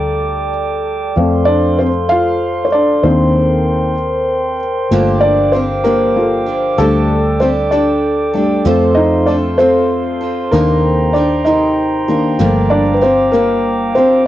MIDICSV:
0, 0, Header, 1, 5, 480
1, 0, Start_track
1, 0, Key_signature, -2, "minor"
1, 0, Tempo, 624350
1, 895, Time_signature, 6, 3, 24, 8
1, 10972, End_track
2, 0, Start_track
2, 0, Title_t, "Glass harmonica"
2, 0, Program_c, 0, 92
2, 0, Note_on_c, 0, 69, 66
2, 0, Note_on_c, 0, 74, 58
2, 0, Note_on_c, 0, 79, 56
2, 0, Note_on_c, 0, 86, 68
2, 866, Note_off_c, 0, 79, 0
2, 882, Note_off_c, 0, 86, 0
2, 885, Note_off_c, 0, 74, 0
2, 897, Note_on_c, 0, 72, 62
2, 898, Note_on_c, 0, 84, 69
2, 901, Note_on_c, 0, 77, 60
2, 2311, Note_off_c, 0, 69, 0
2, 2323, Note_off_c, 0, 72, 0
2, 2325, Note_off_c, 0, 77, 0
2, 2328, Note_on_c, 0, 79, 58
2, 2332, Note_on_c, 0, 70, 59
2, 2333, Note_on_c, 0, 72, 66
2, 3750, Note_off_c, 0, 84, 0
2, 3761, Note_off_c, 0, 70, 0
2, 3777, Note_on_c, 0, 86, 65
2, 3778, Note_on_c, 0, 77, 53
2, 5186, Note_off_c, 0, 72, 0
2, 5203, Note_off_c, 0, 77, 0
2, 5216, Note_on_c, 0, 74, 59
2, 5218, Note_on_c, 0, 69, 65
2, 6620, Note_off_c, 0, 79, 0
2, 6627, Note_off_c, 0, 86, 0
2, 6641, Note_off_c, 0, 74, 0
2, 6655, Note_on_c, 0, 84, 69
2, 6656, Note_on_c, 0, 77, 60
2, 6658, Note_on_c, 0, 72, 61
2, 8065, Note_off_c, 0, 69, 0
2, 8080, Note_off_c, 0, 77, 0
2, 8081, Note_off_c, 0, 72, 0
2, 8091, Note_on_c, 0, 72, 59
2, 8091, Note_on_c, 0, 79, 56
2, 8091, Note_on_c, 0, 82, 62
2, 9503, Note_off_c, 0, 84, 0
2, 9516, Note_off_c, 0, 72, 0
2, 9534, Note_on_c, 0, 77, 57
2, 9535, Note_on_c, 0, 86, 64
2, 10939, Note_off_c, 0, 82, 0
2, 10956, Note_off_c, 0, 77, 0
2, 10972, Note_off_c, 0, 79, 0
2, 10972, Note_off_c, 0, 86, 0
2, 10972, End_track
3, 0, Start_track
3, 0, Title_t, "Felt piano"
3, 0, Program_c, 1, 0
3, 0, Note_on_c, 1, 55, 52
3, 0, Note_on_c, 1, 57, 49
3, 0, Note_on_c, 1, 62, 71
3, 0, Note_on_c, 1, 74, 92
3, 372, Note_off_c, 1, 74, 0
3, 864, Note_off_c, 1, 55, 0
3, 866, Note_off_c, 1, 57, 0
3, 869, Note_off_c, 1, 62, 0
3, 891, Note_on_c, 1, 53, 54
3, 898, Note_on_c, 1, 57, 55
3, 903, Note_on_c, 1, 60, 65
3, 1116, Note_on_c, 1, 74, 93
3, 1137, Note_on_c, 1, 62, 70
3, 1360, Note_off_c, 1, 62, 0
3, 1372, Note_on_c, 1, 72, 82
3, 1374, Note_off_c, 1, 74, 0
3, 1379, Note_off_c, 1, 60, 0
3, 1390, Note_on_c, 1, 60, 64
3, 1427, Note_off_c, 1, 72, 0
3, 1443, Note_off_c, 1, 60, 0
3, 1608, Note_on_c, 1, 77, 108
3, 1625, Note_on_c, 1, 65, 78
3, 2018, Note_off_c, 1, 65, 0
3, 2035, Note_on_c, 1, 73, 62
3, 2052, Note_off_c, 1, 77, 0
3, 2093, Note_off_c, 1, 73, 0
3, 2094, Note_on_c, 1, 74, 89
3, 2109, Note_on_c, 1, 62, 68
3, 2304, Note_off_c, 1, 53, 0
3, 2307, Note_off_c, 1, 57, 0
3, 2326, Note_off_c, 1, 62, 0
3, 2333, Note_on_c, 1, 72, 85
3, 2336, Note_on_c, 1, 51, 57
3, 2339, Note_on_c, 1, 58, 50
3, 2343, Note_off_c, 1, 74, 0
3, 2345, Note_on_c, 1, 62, 63
3, 2348, Note_on_c, 1, 60, 61
3, 3026, Note_off_c, 1, 51, 0
3, 3028, Note_off_c, 1, 58, 0
3, 3031, Note_off_c, 1, 62, 0
3, 3504, Note_off_c, 1, 72, 0
3, 3512, Note_off_c, 1, 60, 0
3, 3772, Note_on_c, 1, 57, 56
3, 3776, Note_on_c, 1, 58, 46
3, 3781, Note_on_c, 1, 65, 57
3, 4002, Note_on_c, 1, 74, 95
3, 4023, Note_on_c, 1, 62, 69
3, 4094, Note_off_c, 1, 57, 0
3, 4096, Note_off_c, 1, 58, 0
3, 4098, Note_off_c, 1, 65, 0
3, 4243, Note_off_c, 1, 62, 0
3, 4245, Note_on_c, 1, 72, 86
3, 4257, Note_off_c, 1, 74, 0
3, 4264, Note_on_c, 1, 60, 67
3, 4301, Note_off_c, 1, 72, 0
3, 4317, Note_off_c, 1, 60, 0
3, 4489, Note_on_c, 1, 70, 95
3, 4504, Note_on_c, 1, 58, 65
3, 4728, Note_off_c, 1, 58, 0
3, 4737, Note_on_c, 1, 69, 49
3, 4740, Note_on_c, 1, 58, 41
3, 4742, Note_on_c, 1, 65, 55
3, 4953, Note_off_c, 1, 69, 0
3, 4954, Note_off_c, 1, 58, 0
3, 4955, Note_off_c, 1, 65, 0
3, 5214, Note_on_c, 1, 69, 97
3, 5219, Note_on_c, 1, 55, 55
3, 5222, Note_on_c, 1, 57, 74
3, 5228, Note_on_c, 1, 62, 64
3, 5234, Note_off_c, 1, 70, 0
3, 5672, Note_off_c, 1, 57, 0
3, 5691, Note_on_c, 1, 72, 84
3, 5706, Note_on_c, 1, 60, 64
3, 5709, Note_off_c, 1, 69, 0
3, 5746, Note_off_c, 1, 72, 0
3, 5759, Note_off_c, 1, 60, 0
3, 5928, Note_on_c, 1, 74, 88
3, 5932, Note_off_c, 1, 62, 0
3, 5943, Note_on_c, 1, 62, 69
3, 6402, Note_off_c, 1, 55, 0
3, 6407, Note_off_c, 1, 62, 0
3, 6413, Note_on_c, 1, 55, 49
3, 6417, Note_on_c, 1, 57, 46
3, 6418, Note_on_c, 1, 62, 52
3, 6441, Note_off_c, 1, 74, 0
3, 6630, Note_off_c, 1, 55, 0
3, 6632, Note_off_c, 1, 57, 0
3, 6633, Note_off_c, 1, 62, 0
3, 6652, Note_on_c, 1, 53, 60
3, 6659, Note_on_c, 1, 57, 51
3, 6661, Note_on_c, 1, 60, 62
3, 6878, Note_on_c, 1, 75, 99
3, 6895, Note_on_c, 1, 63, 84
3, 7118, Note_off_c, 1, 63, 0
3, 7120, Note_on_c, 1, 74, 87
3, 7134, Note_off_c, 1, 75, 0
3, 7136, Note_on_c, 1, 62, 70
3, 7176, Note_off_c, 1, 74, 0
3, 7190, Note_off_c, 1, 62, 0
3, 7342, Note_off_c, 1, 53, 0
3, 7346, Note_off_c, 1, 57, 0
3, 7347, Note_off_c, 1, 60, 0
3, 7363, Note_on_c, 1, 72, 95
3, 7379, Note_on_c, 1, 60, 76
3, 8065, Note_off_c, 1, 60, 0
3, 8082, Note_on_c, 1, 70, 91
3, 8091, Note_on_c, 1, 51, 54
3, 8091, Note_on_c, 1, 58, 75
3, 8095, Note_on_c, 1, 62, 60
3, 8110, Note_off_c, 1, 72, 0
3, 8546, Note_off_c, 1, 58, 0
3, 8559, Note_on_c, 1, 74, 78
3, 8561, Note_off_c, 1, 62, 0
3, 8573, Note_on_c, 1, 62, 65
3, 8582, Note_off_c, 1, 70, 0
3, 8781, Note_off_c, 1, 51, 0
3, 8796, Note_off_c, 1, 62, 0
3, 8801, Note_on_c, 1, 75, 82
3, 8813, Note_off_c, 1, 74, 0
3, 8815, Note_on_c, 1, 63, 63
3, 9290, Note_on_c, 1, 51, 46
3, 9293, Note_on_c, 1, 58, 44
3, 9293, Note_on_c, 1, 62, 52
3, 9315, Note_off_c, 1, 75, 0
3, 9322, Note_off_c, 1, 63, 0
3, 9507, Note_off_c, 1, 51, 0
3, 9508, Note_off_c, 1, 58, 0
3, 9508, Note_off_c, 1, 62, 0
3, 9525, Note_on_c, 1, 53, 55
3, 9528, Note_on_c, 1, 57, 47
3, 9532, Note_on_c, 1, 58, 60
3, 9765, Note_on_c, 1, 74, 91
3, 9773, Note_on_c, 1, 62, 79
3, 9847, Note_off_c, 1, 53, 0
3, 9848, Note_off_c, 1, 57, 0
3, 9851, Note_off_c, 1, 58, 0
3, 9941, Note_off_c, 1, 74, 0
3, 9945, Note_off_c, 1, 62, 0
3, 9946, Note_on_c, 1, 71, 64
3, 10005, Note_off_c, 1, 71, 0
3, 10011, Note_on_c, 1, 72, 81
3, 10017, Note_on_c, 1, 60, 68
3, 10237, Note_off_c, 1, 60, 0
3, 10238, Note_on_c, 1, 70, 87
3, 10252, Note_on_c, 1, 58, 68
3, 10258, Note_off_c, 1, 72, 0
3, 10700, Note_off_c, 1, 58, 0
3, 10724, Note_on_c, 1, 72, 85
3, 10738, Note_off_c, 1, 70, 0
3, 10740, Note_on_c, 1, 60, 70
3, 10958, Note_off_c, 1, 60, 0
3, 10972, Note_off_c, 1, 72, 0
3, 10972, End_track
4, 0, Start_track
4, 0, Title_t, "Steel-string acoustic guitar"
4, 0, Program_c, 2, 25
4, 3778, Note_on_c, 2, 43, 80
4, 3780, Note_on_c, 2, 50, 90
4, 3783, Note_on_c, 2, 53, 92
4, 3789, Note_on_c, 2, 58, 84
4, 3790, Note_on_c, 2, 62, 88
4, 3794, Note_on_c, 2, 67, 103
4, 4243, Note_off_c, 2, 53, 0
4, 4252, Note_on_c, 2, 53, 51
4, 4254, Note_off_c, 2, 58, 0
4, 4257, Note_off_c, 2, 43, 0
4, 4263, Note_on_c, 2, 58, 57
4, 4266, Note_off_c, 2, 62, 0
4, 4269, Note_on_c, 2, 62, 62
4, 4273, Note_off_c, 2, 67, 0
4, 4276, Note_on_c, 2, 67, 66
4, 4484, Note_off_c, 2, 67, 0
4, 4487, Note_off_c, 2, 62, 0
4, 4491, Note_off_c, 2, 58, 0
4, 4494, Note_on_c, 2, 67, 71
4, 4495, Note_off_c, 2, 53, 0
4, 4496, Note_on_c, 2, 62, 65
4, 4500, Note_on_c, 2, 58, 63
4, 4505, Note_on_c, 2, 53, 64
4, 4506, Note_off_c, 2, 50, 0
4, 4509, Note_on_c, 2, 50, 61
4, 4512, Note_on_c, 2, 43, 59
4, 4966, Note_off_c, 2, 67, 0
4, 4969, Note_on_c, 2, 67, 50
4, 4976, Note_off_c, 2, 62, 0
4, 4978, Note_off_c, 2, 58, 0
4, 4979, Note_on_c, 2, 62, 46
4, 4981, Note_off_c, 2, 53, 0
4, 4984, Note_off_c, 2, 43, 0
4, 4987, Note_on_c, 2, 58, 46
4, 4996, Note_on_c, 2, 53, 42
4, 5209, Note_off_c, 2, 50, 0
4, 5213, Note_off_c, 2, 53, 0
4, 5213, Note_off_c, 2, 62, 0
4, 5213, Note_off_c, 2, 67, 0
4, 5213, Note_on_c, 2, 50, 79
4, 5216, Note_on_c, 2, 55, 82
4, 5219, Note_off_c, 2, 58, 0
4, 5222, Note_on_c, 2, 62, 85
4, 5227, Note_on_c, 2, 67, 89
4, 5231, Note_on_c, 2, 69, 92
4, 5679, Note_off_c, 2, 55, 0
4, 5688, Note_on_c, 2, 55, 54
4, 5691, Note_off_c, 2, 62, 0
4, 5694, Note_off_c, 2, 50, 0
4, 5698, Note_off_c, 2, 67, 0
4, 5700, Note_on_c, 2, 62, 58
4, 5708, Note_on_c, 2, 67, 67
4, 5710, Note_off_c, 2, 69, 0
4, 5713, Note_on_c, 2, 69, 66
4, 5926, Note_off_c, 2, 69, 0
4, 5928, Note_off_c, 2, 67, 0
4, 5932, Note_off_c, 2, 55, 0
4, 5932, Note_off_c, 2, 62, 0
4, 5935, Note_on_c, 2, 69, 72
4, 5937, Note_on_c, 2, 67, 65
4, 5941, Note_on_c, 2, 62, 59
4, 5946, Note_on_c, 2, 55, 66
4, 5951, Note_on_c, 2, 50, 59
4, 6405, Note_off_c, 2, 69, 0
4, 6408, Note_on_c, 2, 69, 51
4, 6413, Note_off_c, 2, 67, 0
4, 6418, Note_off_c, 2, 62, 0
4, 6420, Note_off_c, 2, 55, 0
4, 6422, Note_on_c, 2, 67, 48
4, 6423, Note_off_c, 2, 50, 0
4, 6435, Note_on_c, 2, 62, 42
4, 6650, Note_on_c, 2, 53, 89
4, 6652, Note_off_c, 2, 69, 0
4, 6655, Note_on_c, 2, 57, 97
4, 6658, Note_off_c, 2, 62, 0
4, 6659, Note_off_c, 2, 67, 0
4, 6661, Note_on_c, 2, 60, 90
4, 6663, Note_on_c, 2, 65, 103
4, 6666, Note_on_c, 2, 69, 101
4, 7117, Note_off_c, 2, 57, 0
4, 7127, Note_on_c, 2, 57, 61
4, 7132, Note_off_c, 2, 53, 0
4, 7134, Note_off_c, 2, 60, 0
4, 7135, Note_off_c, 2, 65, 0
4, 7137, Note_on_c, 2, 60, 55
4, 7140, Note_off_c, 2, 69, 0
4, 7144, Note_on_c, 2, 65, 59
4, 7152, Note_on_c, 2, 69, 61
4, 7358, Note_off_c, 2, 69, 0
4, 7365, Note_off_c, 2, 65, 0
4, 7368, Note_on_c, 2, 69, 72
4, 7370, Note_off_c, 2, 60, 0
4, 7371, Note_off_c, 2, 57, 0
4, 7374, Note_on_c, 2, 65, 76
4, 7379, Note_on_c, 2, 60, 66
4, 7381, Note_on_c, 2, 57, 71
4, 7385, Note_on_c, 2, 53, 57
4, 7837, Note_off_c, 2, 69, 0
4, 7847, Note_on_c, 2, 69, 54
4, 7854, Note_off_c, 2, 65, 0
4, 7857, Note_off_c, 2, 57, 0
4, 7859, Note_off_c, 2, 53, 0
4, 7862, Note_on_c, 2, 65, 51
4, 7869, Note_off_c, 2, 60, 0
4, 7872, Note_on_c, 2, 60, 44
4, 8089, Note_on_c, 2, 51, 78
4, 8090, Note_off_c, 2, 69, 0
4, 8094, Note_on_c, 2, 48, 75
4, 8097, Note_on_c, 2, 58, 87
4, 8098, Note_off_c, 2, 60, 0
4, 8098, Note_off_c, 2, 65, 0
4, 8101, Note_on_c, 2, 63, 89
4, 8104, Note_on_c, 2, 70, 86
4, 8107, Note_on_c, 2, 67, 88
4, 8566, Note_off_c, 2, 58, 0
4, 8569, Note_off_c, 2, 63, 0
4, 8569, Note_on_c, 2, 58, 55
4, 8571, Note_off_c, 2, 51, 0
4, 8573, Note_off_c, 2, 48, 0
4, 8579, Note_on_c, 2, 63, 58
4, 8583, Note_off_c, 2, 70, 0
4, 8586, Note_on_c, 2, 70, 58
4, 8592, Note_off_c, 2, 67, 0
4, 8595, Note_on_c, 2, 67, 60
4, 8801, Note_off_c, 2, 67, 0
4, 8806, Note_off_c, 2, 70, 0
4, 8809, Note_off_c, 2, 63, 0
4, 8810, Note_on_c, 2, 67, 63
4, 8811, Note_off_c, 2, 58, 0
4, 8815, Note_on_c, 2, 70, 66
4, 8819, Note_on_c, 2, 63, 63
4, 8823, Note_on_c, 2, 58, 56
4, 8824, Note_on_c, 2, 48, 54
4, 8829, Note_on_c, 2, 51, 55
4, 9286, Note_off_c, 2, 67, 0
4, 9289, Note_on_c, 2, 67, 54
4, 9294, Note_off_c, 2, 70, 0
4, 9295, Note_off_c, 2, 63, 0
4, 9297, Note_on_c, 2, 70, 49
4, 9298, Note_off_c, 2, 48, 0
4, 9300, Note_off_c, 2, 51, 0
4, 9305, Note_on_c, 2, 63, 45
4, 9308, Note_off_c, 2, 58, 0
4, 9311, Note_on_c, 2, 58, 45
4, 9526, Note_on_c, 2, 43, 89
4, 9527, Note_off_c, 2, 58, 0
4, 9530, Note_off_c, 2, 67, 0
4, 9530, Note_on_c, 2, 55, 82
4, 9533, Note_off_c, 2, 63, 0
4, 9534, Note_off_c, 2, 70, 0
4, 9534, Note_on_c, 2, 53, 85
4, 9537, Note_on_c, 2, 58, 88
4, 9539, Note_on_c, 2, 62, 94
4, 9543, Note_on_c, 2, 67, 93
4, 9995, Note_off_c, 2, 53, 0
4, 10004, Note_off_c, 2, 58, 0
4, 10004, Note_on_c, 2, 53, 56
4, 10008, Note_off_c, 2, 43, 0
4, 10013, Note_on_c, 2, 58, 54
4, 10018, Note_off_c, 2, 62, 0
4, 10021, Note_on_c, 2, 62, 61
4, 10026, Note_off_c, 2, 67, 0
4, 10027, Note_off_c, 2, 55, 0
4, 10029, Note_on_c, 2, 67, 59
4, 10240, Note_off_c, 2, 67, 0
4, 10245, Note_off_c, 2, 62, 0
4, 10247, Note_off_c, 2, 53, 0
4, 10249, Note_off_c, 2, 58, 0
4, 10250, Note_on_c, 2, 67, 76
4, 10254, Note_on_c, 2, 62, 70
4, 10258, Note_on_c, 2, 58, 65
4, 10262, Note_on_c, 2, 53, 67
4, 10263, Note_on_c, 2, 55, 59
4, 10268, Note_on_c, 2, 43, 54
4, 10724, Note_off_c, 2, 67, 0
4, 10728, Note_on_c, 2, 67, 54
4, 10733, Note_off_c, 2, 58, 0
4, 10734, Note_off_c, 2, 62, 0
4, 10736, Note_off_c, 2, 53, 0
4, 10737, Note_on_c, 2, 62, 45
4, 10738, Note_off_c, 2, 43, 0
4, 10745, Note_on_c, 2, 58, 49
4, 10752, Note_on_c, 2, 53, 44
4, 10775, Note_off_c, 2, 55, 0
4, 10968, Note_off_c, 2, 67, 0
4, 10972, Note_off_c, 2, 53, 0
4, 10972, Note_off_c, 2, 58, 0
4, 10972, Note_off_c, 2, 62, 0
4, 10972, End_track
5, 0, Start_track
5, 0, Title_t, "Fingered electric bass"
5, 0, Program_c, 3, 33
5, 0, Note_on_c, 3, 38, 102
5, 863, Note_off_c, 3, 38, 0
5, 900, Note_on_c, 3, 41, 104
5, 2308, Note_off_c, 3, 41, 0
5, 2335, Note_on_c, 3, 39, 103
5, 3746, Note_off_c, 3, 39, 0
5, 3775, Note_on_c, 3, 31, 97
5, 5185, Note_off_c, 3, 31, 0
5, 5215, Note_on_c, 3, 38, 101
5, 6624, Note_off_c, 3, 38, 0
5, 6654, Note_on_c, 3, 41, 104
5, 8062, Note_off_c, 3, 41, 0
5, 8096, Note_on_c, 3, 39, 109
5, 9502, Note_off_c, 3, 39, 0
5, 9530, Note_on_c, 3, 31, 94
5, 10938, Note_off_c, 3, 31, 0
5, 10972, End_track
0, 0, End_of_file